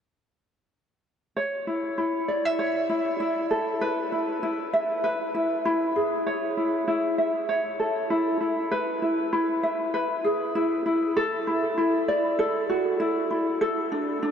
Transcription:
1.36 2.58 C#5 medium
1.67 1.98 E4 soft
1.98 2.90 E4 medium
2.28 2.45 D5 medium
2.45 3.50 E5 soft
2.59 3.81 C#5 medium
2.90 3.20 E4 medium
3.20 4.12 E4 medium
3.51 3.88 A4 medium
3.81 5.03 B4 medium
4.12 4.42 E4 soft
4.43 5.34 E4 medium
4.73 7.18 E5 medium
5.04 6.26 B4 medium
5.35 5.65 E4 medium
5.65 6.57 E4 medium
5.96 6.33 G#4 medium
6.27 7.48 C#5 medium
6.57 6.87 E4 medium
6.88 8.10 E4 medium
7.18 7.79 E5 medium
7.49 8.71 C#5 medium
7.80 8.78 A4 medium
8.10 8.40 E4 medium
8.41 9.02 E4 medium
8.71 9.93 B4 medium
9.02 9.33 E4 soft
9.33 10.24 E4 medium
9.63 12.08 E5 medium
9.94 11.16 B4 medium
10.24 11.23 G#4 medium
10.55 10.85 E4 medium
10.86 11.47 E4 medium
11.17 12.39 A4 medium
11.47 11.76 E4 medium
11.78 12.99 E4 medium
12.08 14.31 D5 medium
12.39 12.69 A4 medium
12.69 12.99 F#4 medium
13.00 13.29 E4 medium
13.31 13.68 E4 medium
13.61 14.31 A4 medium
13.92 14.21 D4 medium
14.23 14.31 D4 medium

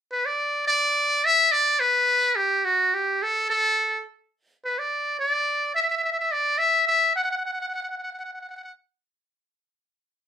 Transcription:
0.12 0.27 B4 medium
0.26 0.67 D5 medium
0.68 1.26 D5 medium
1.25 1.53 E5 medium
1.52 1.81 D5 medium
1.80 2.38 B4 medium
2.36 2.67 G4 medium
2.65 2.95 F#4 medium
2.94 3.24 G4 medium
3.23 3.50 A4 medium
3.50 4.03 A4 medium
4.65 4.80 B4 medium
4.79 5.19 D5 medium
5.19 5.72 D5 medium
5.75 5.82 E5 medium
5.82 5.89 E5 medium
5.90 5.96 E5 medium
5.97 6.03 E5 medium
6.03 6.11 E5 medium
6.12 6.19 E5 medium
6.19 6.33 E5 medium
6.32 6.60 D5 medium
6.58 6.86 E5 medium
6.87 7.14 E5 medium
7.16 7.23 F#5 medium
7.23 7.30 F#5 medium
7.31 7.36 F#5 medium
7.37 7.45 F#5 soft
7.46 7.52 F#5 medium
7.53 7.60 F#5 medium
7.61 7.67 F#5 medium
7.68 7.73 F#5 medium
7.74 7.82 F#5 medium
7.82 7.88 F#5 medium
7.89 7.97 F#5 medium
7.98 8.02 F#5 medium
8.03 8.12 F#5 medium
8.13 8.18 F#5 medium
8.19 8.24 F#5 medium
8.25 8.33 F#5 soft
8.33 8.40 F#5 medium
8.41 8.48 F#5 medium
8.49 8.56 F#5 medium
8.56 8.63 F#5 medium
8.63 8.72 F#5 medium

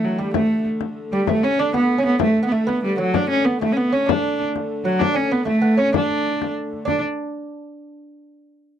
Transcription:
0.00 3.15 D3 medium
0.00 0.19 A3 medium
0.00 3.15 A3 medium
0.04 0.21 F#3 medium
0.18 0.35 G3 medium
0.18 0.34 G3 medium
0.18 frame drum soft
0.34 0.67 A3 medium
0.34 frame drum medium
0.65 frame drum soft
0.81 frame drum medium
1.12 1.27 G3 medium
1.12 1.28 G3 medium
1.12 frame drum soft
1.27 1.44 A3 medium
1.27 1.45 A3 medium
1.27 frame drum medium
1.44 1.61 C#4 loud
1.44 1.58 C#4 medium
1.59 1.75 D4 medium
1.59 frame drum soft
1.74 1.96 B3 medium
1.74 2.01 B3 medium
1.74 frame drum medium
1.98 2.19 C#4 medium
1.98 2.05 C#4 medium
2.05 2.20 B3 medium
2.05 frame drum soft
2.19 2.42 A3 medium
2.19 2.43 A3 medium
2.19 frame drum medium
2.37 frame drum soft
2.43 2.51 B3 medium
2.43 2.54 B3 medium
2.52 2.66 A3 medium
2.52 2.69 A3 medium
2.52 frame drum soft
2.67 2.99 B3 medium
2.67 2.83 B3 medium
2.67 frame drum medium
2.84 2.98 G3 medium
2.98 3.14 F#3 medium
2.98 3.16 F#3 medium
3.14 6.90 D3 medium
3.14 6.90 A3 medium
3.14 3.46 D4 medium
3.14 3.30 D4 medium
3.14 frame drum medium
3.30 3.47 C#4 medium
3.44 3.61 B3 medium
3.44 frame drum soft
3.61 3.76 A3 medium
3.61 3.74 A3 medium
3.61 frame drum medium
3.73 3.92 B3 medium
3.73 3.79 C#4 medium
3.77 3.94 B3 medium
3.92 4.08 C#4 medium
3.92 4.11 C#4 medium
3.92 frame drum soft
4.06 4.39 D4 medium
4.06 4.43 D4 medium
4.06 frame drum loud
4.41 frame drum soft
4.56 frame drum medium
4.85 5.01 F#3 medium
4.85 frame drum soft
5.00 5.17 D4 loud
5.00 5.17 D4 medium
5.00 frame drum medium
5.14 5.31 C#4 medium
5.14 5.34 C#4 medium
5.31 5.45 B3 medium
5.31 5.47 B3 medium
5.31 frame drum soft
5.45 5.61 A3 medium
5.45 5.80 A3 medium
5.45 frame drum medium
5.61 5.77 B3 medium
5.77 5.94 C#4 medium
5.77 frame drum soft
5.93 6.51 D4 medium
5.93 6.53 D4 medium
5.93 frame drum medium
6.10 frame drum soft
6.42 frame drum medium
6.73 frame drum soft
6.85 7.00 D4 medium
6.85 7.02 D4 medium
6.85 frame drum medium

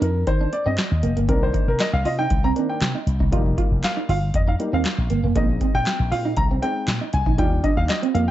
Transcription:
0.01 0.23 F2 loud
0.01 0.10 D#4 medium
0.01 0.28 A#4 medium
0.01 closed hi-hat medium
0.27 0.49 D#3 loud
0.27 0.53 C5 loud
0.27 kick loud
0.27 closed hi-hat medium
0.41 0.48 D4 medium
0.53 0.67 D5 medium
0.53 muted clean electric guitar stroke soft
0.53 closed hi-hat medium
0.66 0.76 G2 medium
0.66 0.73 C4 medium
0.66 1.13 D#5 medium
0.78 muted clean electric guitar stroke soft
0.78 snare loud
0.78 clap medium
0.78 closed hi-hat medium
0.92 1.02 D#2 medium
1.03 1.15 F1 medium
1.03 1.12 A#3 medium
1.03 closed hi-hat medium
1.17 1.27 G1 medium
1.17 1.24 A#3 medium
1.17 closed hi-hat medium
1.28 1.50 C2 loud
1.28 2.54 D#3 medium
1.28 2.55 A#3 medium
1.28 1.37 C4 loud
1.28 2.55 D4 medium
1.28 1.43 A#4 medium
1.28 kick loud
1.28 closed hi-hat medium
1.42 1.69 C5 medium
1.42 muted clean electric guitar stroke soft
1.54 1.62 D#4 medium
1.54 kick loud
1.54 closed hi-hat medium
1.68 1.78 C3 medium
1.68 1.80 A#4 medium
1.79 1.94 D#5 loud
1.79 muted clean electric guitar stroke soft
1.79 snare loud
1.79 clap medium
1.79 closed hi-hat loud
1.93 2.03 C2 medium
1.93 2.06 F5 medium
2.05 2.27 C3 loud
2.05 2.14 F4 medium
2.05 2.19 D#5 medium
2.05 open hi-hat medium
2.19 2.26 D#4 medium
2.19 2.45 G5 loud
2.30 2.52 C2 loud
2.30 muted clean electric guitar stroke soft
2.30 kick loud
2.30 closed hi-hat medium
2.44 2.52 C4 medium
2.44 2.50 A#5 loud
2.56 2.79 D#3 soft
2.56 2.79 A#3 soft
2.56 2.65 C4 medium
2.56 2.79 D4 medium
2.56 closed hi-hat medium
2.69 3.17 G5 medium
2.81 2.93 C3 loud
2.81 snare loud
2.81 clap medium
2.81 closed hi-hat medium
2.95 3.02 D#4 medium
3.07 3.18 C2 medium
3.07 muted clean electric guitar stroke soft
3.07 closed hi-hat medium
3.20 3.30 C2 loud
3.20 3.28 D#4 medium
3.20 kick medium
3.32 3.54 F1 loud
3.32 4.04 G3 medium
3.32 4.05 A#3 medium
3.32 4.05 D#4 medium
3.32 3.41 F4 loud
3.32 kick loud
3.32 closed hi-hat medium
3.46 muted clean electric guitar stroke soft
3.58 3.66 F4 medium
3.58 kick loud
3.58 closed hi-hat medium
3.71 3.81 F1 medium
3.84 4.08 F5 medium
3.84 muted clean electric guitar stroke soft
3.84 snare medium
3.84 clap medium
3.84 closed hi-hat loud
3.97 4.04 D#4 medium
4.09 4.30 G1 loud
4.09 4.17 F4 medium
4.09 4.35 F5 medium
4.09 open hi-hat medium
4.34 4.55 F2 loud
4.34 4.40 D#5 medium
4.34 kick loud
4.34 closed hi-hat loud
4.48 4.55 D#4 medium
4.48 4.54 F5 medium
4.59 4.82 G3 medium
4.59 4.83 A#3 soft
4.59 4.83 D#4 medium
4.59 muted clean electric guitar stroke soft
4.59 closed hi-hat medium
4.73 4.83 D#2 medium
4.73 4.81 C4 medium
4.73 5.21 F5 medium
4.85 muted clean electric guitar stroke soft
4.85 snare loud
4.85 clap medium
4.85 closed hi-hat medium
4.98 5.08 A#1 medium
5.10 5.22 G1 medium
5.10 5.19 A#3 medium
5.10 closed hi-hat medium
5.24 5.34 F1 loud
5.24 5.31 A#3 medium
5.35 5.57 A#1 loud
5.35 6.60 G#3 medium
5.35 5.44 A#3 loud
5.35 6.61 C4 medium
5.35 6.61 D#4 medium
5.35 5.76 D#5 medium
5.35 kick loud
5.35 closed hi-hat medium
5.49 muted clean electric guitar stroke soft
5.61 5.70 C4 medium
5.61 kick medium
5.61 closed hi-hat medium
5.75 5.85 A#2 medium
5.75 6.09 G5 loud
5.86 muted clean electric guitar stroke soft
5.86 snare loud
5.86 clap medium
5.86 closed hi-hat loud
6.00 6.10 A#1 medium
6.12 6.33 A#2 loud
6.12 6.20 F4 medium
6.12 6.38 F5 medium
6.12 open hi-hat medium
6.25 6.33 D#4 medium
6.37 6.59 C2 loud
6.37 6.43 A#5 loud
6.37 muted clean electric guitar stroke medium
6.37 kick loud
6.37 closed hi-hat medium
6.51 6.58 C4 medium
6.62 6.85 G#3 medium
6.62 6.85 C4 soft
6.62 6.71 C4 medium
6.62 6.86 D#4 medium
6.62 7.15 G5 loud
6.62 closed hi-hat medium
6.88 6.99 A#2 medium
6.88 snare loud
6.88 clap medium
6.88 closed hi-hat medium
7.01 7.09 D#4 medium
7.13 7.25 C2 medium
7.13 7.40 G#5 loud
7.13 muted clean electric guitar stroke medium
7.13 closed hi-hat medium
7.26 7.37 A#1 loud
7.26 7.34 D#4 medium
7.26 kick medium
7.38 7.60 D#2 loud
7.38 8.31 G3 medium
7.38 8.31 D4 medium
7.38 7.47 D#4 loud
7.38 8.31 F4 medium
7.38 7.63 G5 loud
7.38 kick loud
7.38 closed hi-hat medium
7.52 muted clean electric guitar stroke soft
7.64 7.72 D4 medium
7.64 7.78 D#5 medium
7.64 kick loud
7.64 closed hi-hat medium
7.77 7.87 D#2 loud
7.77 7.89 F5 medium
7.89 8.16 D#5 medium
7.89 muted clean electric guitar stroke soft
7.89 snare loud
7.89 clap medium
7.89 closed hi-hat loud
8.03 8.10 C4 medium
8.03 closed hi-hat medium
8.15 8.31 F2 medium
8.15 8.23 A#3 medium
8.15 8.29 F5 medium
8.15 closed hi-hat medium

